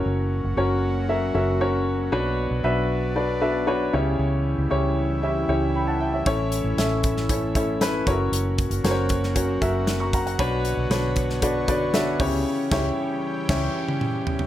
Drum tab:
CC |----------------|----------------|----------------|----------------|
HH |----------------|----------------|----------------|x-x-x-x-x-x-x-x-|
SD |----------------|----------------|----------------|----o--o----o---|
T1 |----------------|----------------|----------------|----------------|
T2 |----------------|----------------|----------------|----------------|
FT |----------------|----------------|----------------|----------------|
BD |----------------|----------------|----------------|o-----o-o-o---o-|

CC |----------------|----------------|--x-----x-------|
HH |x-xxx-x-x-x-x-xx|x-x-x-x-x-x-x-o-|----------------|
SD |----o--o----o---|----o--o----o---|--o-----o-------|
T1 |----------------|----------------|-----------o----|
T2 |----------------|----------------|------------o---|
FT |----------------|----------------|--------------oo|
BD |--o---o-o-o---o-|o-----o-o-o---o-|--o-----o-------|